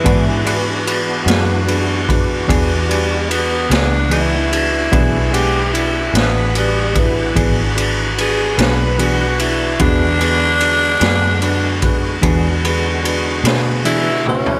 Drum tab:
RD |x-x-x-x-x-x-x-x-x-x-x-x-|x-x-x-x-x-x-x-x-x-x-x-x-|x-x-x-x-x-x-x-x-x-x-x---|
SD |------o-----------o-----|------o-----------o-----|------o-----------o-----|
T1 |------------------------|------------------------|----------------------o-|
FT |------------------------|------------------------|-----------------------o|
BD |o---------o-o-----------|o---------o-o-----------|o---------o-o-----------|